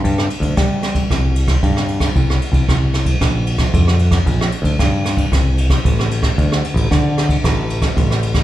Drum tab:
RD |x-xxx-xxx-xxx-xx|x-xxx-xxx-xxx-xx|x-xxx-xxx-xxx-xx|x-xxx-xxx-xxx-xx|
SD |-r--r-r-r--r-r-r|-r--r-r-r--r-r-r|-r--r-r-r--r-r-r|-r--r-r-r--r-r-r|
BD |o--oo--oo--oo--o|o--oo--oo--oo--o|o--oo--oo--oo--o|o--oo--oo--oo--o|